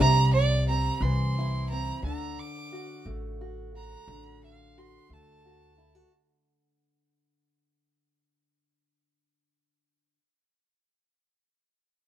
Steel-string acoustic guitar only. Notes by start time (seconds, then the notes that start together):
0.01 C3
0.69 C4
1.03 E3
1.39 E4
1.72 C4
2.04 D3
2.72 F#4
3.06 A3
3.41 F#4
3.75 F#4
4.08 D3
4.78 F#4
5.10 A3
5.46 F#4
5.78 E4
5.95 F#4